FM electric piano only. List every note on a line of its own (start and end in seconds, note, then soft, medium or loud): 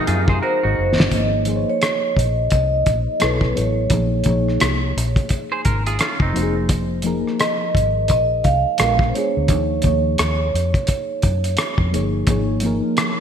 0.00 1.10 F3 medium
0.00 1.11 A#3 medium
0.00 1.12 D#4 medium
0.00 1.12 G#4 medium
0.00 0.54 A#4 medium
0.00 1.13 C5 medium
0.00 1.13 D#5 medium
1.10 1.41 F3 medium
1.10 1.41 A#3 soft
1.10 1.42 D#4 soft
1.10 1.42 G#4 soft
1.10 1.42 C#5 medium
1.46 2.62 F3 medium
1.46 2.62 A#3 medium
1.46 2.63 D#4 medium
1.46 2.63 G#4 medium
1.50 1.56 C5 medium
1.56 2.67 C#5 medium
3.20 3.50 F#3 medium
3.20 3.51 B3 medium
3.20 3.51 E4 medium
3.20 3.51 A4 medium
3.20 3.52 C#5 medium
3.55 3.85 F#3 medium
3.55 3.85 B3 soft
3.55 3.86 E4 soft
3.55 3.86 A4 soft
3.55 3.87 C#5 medium
3.90 4.20 F3 medium
3.90 4.21 A#3 soft
3.90 4.21 D#4 soft
3.90 4.22 G#4 medium
3.94 4.22 C#5 medium
4.25 5.41 F3 medium
4.25 5.41 A#3 medium
4.25 5.42 D#4 medium
4.25 5.42 G#4 medium
4.25 5.43 C#5 medium
6.33 6.94 F3 medium
6.33 6.94 A#3 medium
6.33 6.95 D#4 medium
6.33 6.43 F#4 medium
6.33 6.95 C5 medium
6.42 6.98 G#4 medium
7.03 8.20 F3 medium
7.03 8.20 A#3 medium
7.03 8.20 D#4 medium
7.03 8.21 G#4 medium
7.03 8.21 A#4 medium
8.78 9.08 G#3 medium
8.78 9.09 B3 medium
8.78 9.10 D4 medium
8.78 9.10 F4 medium
8.78 9.10 A#4 medium
9.14 9.44 G#3 soft
9.14 9.44 B3 soft
9.14 9.44 D4 medium
9.14 9.45 F4 soft
9.14 9.46 G#4 medium
9.49 9.79 F3 medium
9.49 9.79 A#3 soft
9.49 9.80 D#4 soft
9.49 9.80 G#4 medium
9.49 9.81 C#5 medium
9.83 10.99 F3 medium
9.83 10.99 A#3 soft
9.83 11.00 D#4 medium
9.83 11.00 G#4 medium
9.83 11.01 C#5 medium
11.92 12.22 F3 medium
11.92 12.23 A#3 medium
11.92 12.23 D#4 medium
11.92 12.23 G#4 medium
11.96 12.24 C#5 medium
12.27 12.57 F3 medium
12.27 12.57 A#3 medium
12.27 12.58 D#4 medium
12.27 12.58 G#4 medium
12.27 12.59 C#5 medium
12.62 13.20 F3 medium
12.62 13.20 A#3 medium
12.62 13.20 D#4 medium
12.62 13.20 G#4 medium
12.66 13.20 A#4 medium